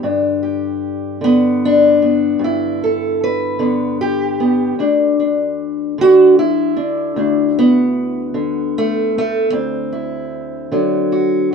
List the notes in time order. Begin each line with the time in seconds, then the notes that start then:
Already playing: D3
0.03 G2 D4
0.43 G4
1.21 D3 B3
1.65 D4
2.02 B3
2.39 G2
2.44 E4
2.84 A4
3.24 B4
3.59 D3 B3
4.01 G4
4.40 B3
4.79 D2 D4
5.20 D4
5.98 D3 F#4
6.39 E4
6.77 D4
7.16 D2 D4
7.59 B3
8.34 D3
8.78 A3
9.18 A3
9.53 D2 C4
9.93 E4
10.72 D3 F#3
11.12 F#4